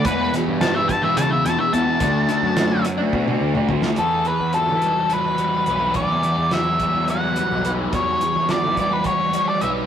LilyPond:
<<
  \new Staff \with { instrumentName = "Lead electric guitar" } { \time 7/8 \key e \dorian \tempo 4 = 106 b'8 r8 a''16 e''16 a''16 e''16 a''16 e''16 a''16 e''16 a''8~ | a''4. r2 | a'8 b'8 a'4 b'4. | d''4 e''4 fis''4 r8 |
cis''4 d''8 d''16 b'16 cis''8. d''16 e''8 | }
  \new Staff \with { instrumentName = "Distorted electric guitar" } { \clef bass \time 7/8 \key e \dorian <e, b, e>8 <e, b, e>8 <e, b, e>16 <b, e>8 <b, e>8 <b, e>8 <b, e>16 <e, b, e>16 <b, e>16 | <d a d'>8 <d a d'>8 <d a d'>16 <a d'>8 <a d'>8 <a d'>8 <a d'>16 <d a d'>16 <a d'>16 | e,8 e8 fis8 g8 fis8 g8 b'8 | e,8 e8 fis8 g8 fis8 g8 b'8 |
e,8 e8 fis8 g8 fis8 g8 b'8 | }
  \new Staff \with { instrumentName = "Picked electric bass" } { \clef bass \time 7/8 \key e \dorian e,8 r16 g,4~ g,16 cis8 e,16 r16 e,8 | d,8 r16 fis,4~ fis,16 b,8 d,16 r16 d,8 | e,8 r16 e,8 e8 r4 r16 b,,8~ | b,,16 e,8 e,4 e,4 b,,8. |
e,8 r16 e,8 e8 r4 r16 b,,8 | }
  \new DrumStaff \with { instrumentName = "Drums" } \drummode { \time 7/8 <hh bd>8 <hh sn>8 <hh sn>8 <hh bd>8 hh8 <hh sn>8 hh8 | <hh bd>8 hh8 <hh sn>8 hh8 bd16 tommh8 toml16 tomfh16 sn16 | hh8 hh8 hh8 hh8 hh8 hh8 hh8 | <hh bd>8 hh8 <hh sn>8 <hh bd>8 hh8 hh8 hh8 |
<hh bd>8 hh8 <hh sn>8 <hh bd>8 <hh bd>8 hh8 hh8 | }
>>